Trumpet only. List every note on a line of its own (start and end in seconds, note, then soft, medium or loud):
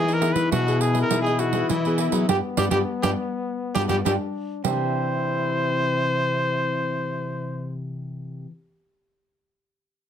0.00 0.15 G#4 medium
0.14 0.34 A#4 medium
0.33 0.51 B4 medium
0.52 0.83 F#4 medium
0.81 1.01 G#4 medium
1.02 1.20 A#4 medium
1.22 1.41 G#4 medium
1.40 1.72 F#4 medium
1.71 2.29 E4 medium
2.30 2.36 G4 medium
2.58 2.65 G4 medium
2.71 2.79 G4 medium
3.03 3.10 G4 medium
3.75 3.82 G4 medium
3.89 3.97 G4 medium
4.06 4.13 G4 medium
4.65 7.76 C5 medium